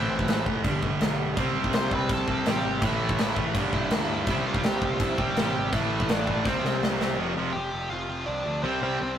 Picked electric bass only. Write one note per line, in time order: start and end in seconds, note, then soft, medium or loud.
0.09 0.27 A1 medium
0.28 0.45 A1 medium
0.46 0.63 F1 medium
0.64 0.81 G1 medium
0.82 0.99 G1 medium
1.02 1.35 B1 medium
1.37 1.54 C2 medium
1.55 1.72 C2 medium
1.74 1.90 C2 medium
1.92 2.08 C2 medium
2.10 2.43 C2 medium
2.46 2.63 A1 medium
2.64 2.81 G#1 medium
2.82 2.99 A1 medium
3.01 3.17 A1 medium
3.19 3.36 A1 medium
3.37 3.53 A1 medium
3.55 3.72 G1 medium
3.73 3.90 G1 medium
3.91 4.25 D2 medium
4.27 4.44 C2 medium
4.46 4.63 C2 medium
4.64 4.81 C2 medium
4.82 4.99 C2 loud
5.00 5.34 C2 medium
5.37 5.53 A1 medium
5.56 5.72 G#1 medium
5.73 5.90 A1 medium
5.91 6.08 A1 medium
6.09 6.26 A1 medium
6.28 6.44 A1 medium
6.46 6.62 C2 medium
6.64 6.81 C2 loud
6.83 7.16 C2 medium
7.18 7.33 F1 medium
7.36 7.51 F1 medium
7.55 7.69 F1 medium
7.73 7.88 F1 medium
7.91 8.06 F1 medium
8.09 8.24 F1 medium
8.28 8.42 C2 medium
8.46 8.61 D2 medium
8.64 8.79 C2 medium
8.83 8.97 C2 medium
9.01 9.16 C2 medium